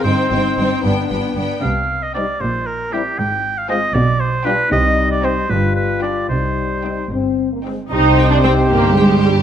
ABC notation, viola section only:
X:1
M:6/8
L:1/16
Q:3/8=76
K:Cm
V:1 name="Viola section"
C2 C2 C2 =B,2 B,2 B,2 | z4 C2 z4 C2 | z4 C2 z4 D2 | z4 C2 z4 D2 |
z4 C2 z4 C2 | E3 D C2 B,2 A,2 G,2 |]